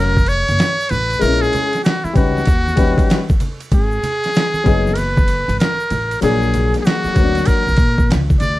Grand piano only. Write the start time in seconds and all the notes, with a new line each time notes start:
Already playing: F#3 C#4 A#4 F5
1.19 G#3 B3 E4 A#4
1.26 C#4
2.13 G3 C#4 D#4 B4
2.76 G3 C#4 D#4 B4
4.64 F#3 B3 D#4 G#4
6.21 F#3 A#3 D4 G#4
7.14 F#3 A#3 B3 F#4
7.23 D4